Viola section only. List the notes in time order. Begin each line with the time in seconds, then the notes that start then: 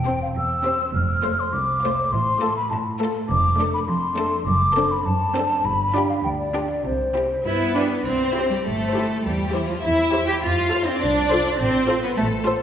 0.06 C4
0.66 C4
1.25 A3
1.84 A3
2.41 A3
2.99 A3
3.58 A3
4.17 A3
4.76 C4
5.35 C4
5.95 D4
6.54 D4
7.15 C4
7.45 E4
7.76 D4
8.35 E4 G4
8.95 E4 G4
9.53 G4
10.13 G4
10.71 F4 A4
11.30 F4 A4
11.89 F4 A4
12.46 F4 A4